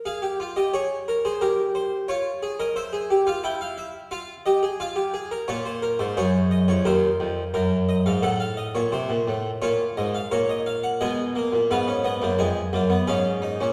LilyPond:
<<
  \new Staff \with { instrumentName = "Harpsichord" } { \time 4/4 \key bes \minor \tempo 4 = 87 << { f''8. ees''16 des''8. c''16 bes'8 c''8 des''8. ees''16 | e''8. f''16 g''16 f''16 e''8 f''8 ees''8 f''4 | des''16 c''16 bes'16 c''16 des''8 ees''16 des''16 c''4 bes'8 ees''16 f''16 | ges''16 f''16 ees''16 des''16 c''4 des''8 ees''16 f''16 des''16 ees''16 f''16 ges''16 |
\key gis \dorian gis''4 eis''8 dis''8 gis''4 eis''4 | } \\ { aes'16 g'16 f'16 g'16 aes'8 bes'16 aes'16 g'4 f'8 aes'16 bes'16 | c''16 aes'16 g'16 f'16 e'4 f'8 g'16 aes'16 f'16 g'16 aes'16 bes'16 | f'4 aes'4 bes'2 | a'2 f'4 bes'4 |
dis''4 b'2 gis'4 | } >> }
  \new Staff \with { instrumentName = "Harpsichord" } { \clef bass \time 4/4 \key bes \minor << { r1 | r1 | r1 | r1 |
\key gis \dorian gis8 ais8 b16 cis'16 b16 ais16 gis8 ais16 b16 cis'8 dis'16 cis'16 | } \\ { r1 | r1 | bes,8. aes,16 ges,8. f,16 ees,8 f,8 ges,8. aes,16 | a,8. bes,16 c16 bes,16 a,8 bes,8 aes,8 bes,4 |
b,8. ais,16 gis,8. fis,16 eis,8 fis,8 gis,8. ais,16 | } >> }
>>